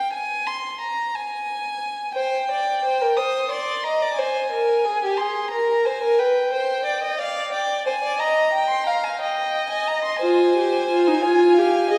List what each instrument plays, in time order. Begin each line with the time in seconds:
Already playing: violin G5
0.13 violin G#5
0.47 violin C6
0.81 violin A#5
1.15 violin G#5
2.16 violin C5 G5
2.51 violin D5
2.85 violin C5
3.01 violin A#4
3.17 violin C5 D#6
3.50 violin D5 C6
3.84 violin D#5 A#5
4.02 violin D5
4.16 violin C5 G#5
4.52 violin A#4
4.85 violin G#4
5.04 violin G4
5.17 violin G#4 C6
5.51 violin A#4 A#5
5.85 violin C5 G#5
6.03 violin A#4
6.19 violin B4 G5
6.53 violin C5
6.85 violin D5
7.03 violin D#5
7.18 violin D5 F5
7.52 violin D5 G5
7.87 violin C5 G#5
8.03 violin D5
8.20 violin D#5 A#5
8.53 violin G5
8.70 violin C6
8.87 violin F5 A#5
9.04 violin G#5
9.20 violin D#5 G5
9.70 violin G#5
9.87 violin A#5
10.05 violin C6
10.22 viola F4, violin C5 G#5
10.57 viola G4
10.90 viola F4
11.08 viola D#4
11.22 viola F4, violin G#5
11.57 viola G4, violin F5
11.90 viola G#4, violin D#5